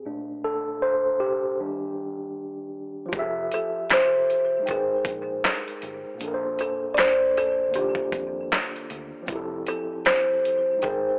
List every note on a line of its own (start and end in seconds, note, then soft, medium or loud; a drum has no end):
0.05 1.17 A#2 medium
0.05 1.17 A3 soft
0.05 1.17 D4 medium
0.44 0.84 A4 loud
0.82 1.22 C5 medium
1.20 2.70 G4 medium
1.60 2.71 D#3 medium
1.60 2.71 G3 soft
1.60 2.71 D4 medium
3.06 4.60 F3 medium
3.06 4.62 F4 medium
3.12 3.49 F1 loud
3.12 4.63 G4 medium
3.12 3.22 G#4 medium
3.12 kick loud
3.12 closed hi-hat medium
3.12 shaker medium
3.19 4.68 A4 medium
3.19 4.67 E5 loud
3.52 3.89 A4 medium
3.52 closed hi-hat medium
3.52 shaker soft
3.90 4.65 C5 loud
3.90 snare medium
3.90 clap medium
3.90 closed hi-hat medium
3.90 shaker medium
4.30 closed hi-hat medium
4.30 shaker soft
4.59 6.14 G#3 medium
4.59 6.15 D#4 medium
4.66 4.89 G#1 loud
4.66 6.19 A#4 medium
4.66 6.17 G5 medium
4.66 kick medium
4.66 closed hi-hat medium
4.66 shaker medium
4.71 5.42 G#4 medium
4.71 4.77 B4 medium
4.79 6.24 C5 medium
4.90 muted fingered electric bass stroke soft
5.05 5.41 A#1 medium
5.05 kick loud
5.05 closed hi-hat medium
5.05 shaker soft
5.44 snare loud
5.44 clap loud
5.44 closed hi-hat medium
5.44 shaker medium
5.68 closed hi-hat soft
5.82 6.03 G1 loud
5.82 closed hi-hat medium
5.82 shaker soft
6.14 7.68 A#2 medium
6.14 7.70 A#3 medium
6.19 6.57 A#1 medium
6.19 7.71 D4 medium
6.19 closed hi-hat medium
6.19 shaker medium
6.24 7.73 A4 medium
6.24 6.32 A#4 medium
6.34 7.78 C5 medium
6.58 6.90 A4 medium
6.58 closed hi-hat medium
6.58 shaker soft
6.94 6.99 D5 medium
6.94 closed hi-hat medium
6.99 7.34 C5 medium
6.99 snare loud
6.99 clap medium
6.99 shaker medium
7.37 7.76 A4 medium
7.37 closed hi-hat medium
7.37 shaker soft
7.68 9.22 D#3 medium
7.68 9.24 A#3 medium
7.74 7.95 D#2 medium
7.74 9.25 D4 medium
7.74 8.48 G4 medium
7.74 closed hi-hat medium
7.74 shaker medium
7.78 9.27 F4 medium
7.78 9.29 G4 medium
7.95 kick loud
8.12 8.48 F2 medium
8.12 kick medium
8.12 closed hi-hat medium
8.12 shaker medium
8.52 snare loud
8.52 clap loud
8.52 closed hi-hat medium
8.52 shaker medium
8.76 closed hi-hat soft
8.90 9.11 D2 loud
8.90 closed hi-hat medium
8.90 shaker soft
9.23 10.76 F3 medium
9.23 10.78 C4 medium
9.27 9.64 F1 loud
9.27 10.80 E4 medium
9.27 kick loud
9.27 closed hi-hat medium
9.27 shaker medium
9.32 10.81 G4 medium
9.32 10.83 A4 medium
9.66 10.03 A4 medium
9.66 closed hi-hat medium
9.66 shaker soft
10.05 10.85 C5 loud
10.05 snare loud
10.05 clap medium
10.05 closed hi-hat medium
10.05 shaker medium
10.45 closed hi-hat medium
10.45 shaker soft
10.76 11.19 G#3 medium
10.76 11.19 D#4 medium
10.82 11.04 G#1 loud
10.82 11.19 G#4 medium
10.82 11.19 G5 medium
10.82 kick medium
10.82 closed hi-hat medium
10.82 shaker medium
10.86 11.19 A#4 medium
10.86 11.19 C5 medium
11.06 muted fingered electric bass stroke soft